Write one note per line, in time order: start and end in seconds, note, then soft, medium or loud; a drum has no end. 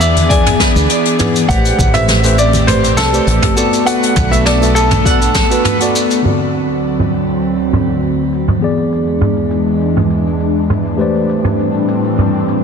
0.00 0.54 E2 medium
0.00 1.47 E3 medium
0.00 1.47 B3 medium
0.00 1.47 D4 medium
0.00 1.47 G#4 loud
0.00 0.29 D5 medium
0.00 0.30 E5 medium
0.00 high bongo soft
0.00 shaker medium
0.17 closed hi-hat soft
0.17 low conga medium
0.17 shaker soft
0.29 0.43 E3 medium
0.29 0.43 B3 medium
0.29 0.44 G#4 medium
0.29 1.15 D5 medium
0.29 0.44 D5 medium
0.29 0.59 G#5 loud
0.29 kick loud
0.29 closed hi-hat medium
0.29 shaker soft
0.46 closed hi-hat medium
0.46 mid tom medium
0.46 shaker soft
0.60 0.87 B4 medium
0.60 kick medium
0.60 snare medium
0.60 shaker medium
0.75 0.86 D2 medium
0.75 1.16 E3 medium
0.75 1.16 B3 medium
0.75 1.17 G#4 medium
0.75 1.17 D5 medium
0.75 shaker medium
0.89 1.18 D5 medium
0.89 closed hi-hat medium
0.89 shaker soft
1.05 closed hi-hat medium
1.19 1.45 E3 loud
1.19 1.46 B3 medium
1.19 1.46 G#4 medium
1.19 1.47 D5 loud
1.19 mid tom medium
1.19 shaker medium
1.36 closed hi-hat soft
1.36 shaker medium
1.48 1.71 A1 loud
1.48 1.90 A3 loud
1.48 6.20 A3 medium
1.48 3.55 C4 medium
1.48 1.91 G4 loud
1.48 1.76 G4 loud
1.48 3.55 G4 loud
1.48 1.91 B4 medium
1.48 1.91 C5 loud
1.48 1.91 D5 loud
1.48 1.96 F#5 loud
1.48 kick loud
1.48 closed hi-hat medium
1.48 shaker medium
1.65 closed hi-hat medium
1.65 shaker medium
1.79 2.97 A1 medium
1.79 kick loud
1.79 high bongo medium
1.79 low conga medium
1.79 shaker medium
1.94 2.20 A3 medium
1.94 2.20 G4 medium
1.94 2.21 B4 medium
1.94 2.21 C5 medium
1.94 2.35 E5 loud
1.94 closed hi-hat medium
1.94 mid tom medium
1.94 high conga medium
1.94 shaker soft
2.08 snare medium
2.08 closed hi-hat medium
2.08 shaker medium
2.23 2.35 A3 loud
2.23 2.36 G4 loud
2.23 2.36 B4 loud
2.23 2.36 C5 loud
2.23 2.37 E5 loud
2.23 closed hi-hat medium
2.23 high bongo soft
2.23 high conga medium
2.23 shaker medium
2.38 2.69 D5 loud
2.38 shaker medium
2.53 closed hi-hat soft
2.53 low conga medium
2.53 shaker soft
2.67 2.81 A3 medium
2.67 2.81 G4 medium
2.67 2.81 B4 medium
2.67 2.98 C5 loud
2.67 2.81 C5 medium
2.67 2.82 D5 medium
2.67 closed hi-hat medium
2.67 mid tom medium
2.67 shaker medium
2.84 closed hi-hat medium
2.84 shaker soft
2.97 3.19 C2 medium
2.97 3.53 A4 loud
2.97 snare medium
2.97 shaker medium
3.12 3.53 A3 medium
3.12 3.53 G4 medium
3.12 3.54 B4 medium
3.12 3.54 C5 medium
3.12 3.54 D5 medium
3.12 shaker medium
3.27 3.38 A1 medium
3.27 closed hi-hat medium
3.27 shaker medium
3.42 kick medium
3.42 closed hi-hat medium
3.42 mid tom medium
3.55 3.83 B3 medium
3.55 6.22 B3 medium
3.55 6.22 D4 loud
3.55 3.83 F#4 medium
3.55 3.84 A4 medium
3.55 3.83 A4 medium
3.55 3.84 D5 loud
3.55 shaker medium
3.73 closed hi-hat soft
3.73 shaker soft
3.85 4.28 B3 loud
3.85 4.28 F#4 loud
3.85 4.28 A4 medium
3.85 4.14 B4 medium
3.85 4.29 D5 loud
3.85 4.33 F#5 loud
3.85 closed hi-hat medium
3.85 shaker medium
4.03 closed hi-hat medium
4.03 shaker soft
4.16 5.35 B1 medium
4.16 4.43 B4 medium
4.16 kick loud
4.16 mid tom medium
4.16 high bongo medium
4.16 low conga medium
4.16 shaker medium
4.31 4.57 B3 medium
4.31 4.58 F#4 medium
4.31 4.58 A4 medium
4.31 4.46 E5 loud
4.31 4.59 E5 loud
4.31 closed hi-hat soft
4.31 high conga medium
4.31 shaker medium
4.46 4.73 A4 medium
4.46 4.73 D5 loud
4.46 snare medium
4.46 closed hi-hat medium
4.46 shaker medium
4.61 4.73 B3 loud
4.61 4.73 F#4 loud
4.61 4.74 A4 loud
4.61 4.74 E5 loud
4.61 closed hi-hat medium
4.61 high bongo soft
4.61 high conga medium
4.61 shaker soft
4.75 5.90 A4 loud
4.75 5.04 B4 medium
4.75 high bongo soft
4.75 shaker medium
4.91 closed hi-hat soft
4.91 mid tom medium
4.91 low conga medium
4.91 shaker soft
5.04 5.18 B3 medium
5.04 5.18 F#4 medium
5.04 5.19 A4 medium
5.04 5.19 D5 medium
5.04 5.34 F#5 loud
5.04 kick loud
5.04 closed hi-hat medium
5.04 shaker medium
5.22 closed hi-hat medium
5.22 shaker soft
5.35 5.46 A1 medium
5.35 5.63 A4 medium
5.35 kick medium
5.35 snare medium
5.35 shaker medium
5.50 5.76 B3 loud
5.50 5.77 F#4 medium
5.50 5.77 A4 medium
5.50 5.78 B4 loud
5.50 closed hi-hat soft
5.50 shaker soft
5.64 5.93 B4 medium
5.64 closed hi-hat medium
5.64 mid tom medium
5.64 shaker medium
5.80 6.21 B3 medium
5.80 6.21 F#4 medium
5.80 6.21 A4 medium
5.80 6.22 D5 loud
5.80 closed hi-hat medium
5.80 shaker medium
5.96 shaker medium
6.11 closed hi-hat medium
6.11 shaker soft
6.22 8.60 D2 medium
6.22 8.57 D3 medium
6.22 8.60 D3 medium
6.22 8.60 F#3 medium
6.22 8.58 C4 medium
6.22 8.60 C4 medium
6.22 8.59 F#4 medium
6.22 mid tom medium
6.22 crash medium
6.22 shaker soft
6.27 8.60 D5 medium
6.41 shaker soft
6.54 shaker medium
6.69 shaker soft
6.84 shaker medium
6.99 mid tom medium
6.99 shaker soft
7.14 shaker medium
7.30 shaker soft
7.43 shaker soft
7.59 shaker soft
7.73 mid tom medium
7.73 shaker medium
7.89 shaker soft
8.03 shaker soft
8.32 shaker medium
8.47 mid tom medium
8.47 shaker soft
8.59 10.97 E2 medium
8.59 10.95 E3 medium
8.59 12.64 E3 medium
8.59 10.97 G#3 medium
8.59 10.96 B3 medium
8.59 12.64 D4 medium
8.59 10.96 G#4 medium
8.59 shaker medium
8.64 10.97 D5 medium
8.78 shaker soft
8.92 shaker medium
9.07 shaker soft
9.21 mid tom medium
9.21 shaker medium
9.37 shaker soft
9.51 shaker medium
9.67 shaker soft
9.81 shaker medium
9.97 mid tom medium
9.97 shaker soft
10.10 shaker medium
10.27 shaker soft
10.40 shaker soft
10.70 mid tom medium
10.70 shaker medium
10.86 shaker soft
10.97 12.64 A2 medium
10.97 12.64 G3 medium
10.97 12.64 A3 medium
10.97 12.64 C4 medium
10.97 12.64 G4 medium
10.97 12.64 B4 medium
10.97 12.64 C5 medium
10.97 shaker medium
11.01 12.64 D5 medium
11.15 shaker soft
11.29 shaker medium
11.44 mid tom medium
11.44 shaker soft
11.59 shaker medium
11.74 shaker soft
11.88 shaker medium
12.04 shaker soft
12.18 mid tom medium
12.18 shaker soft
12.34 shaker soft
12.48 shaker medium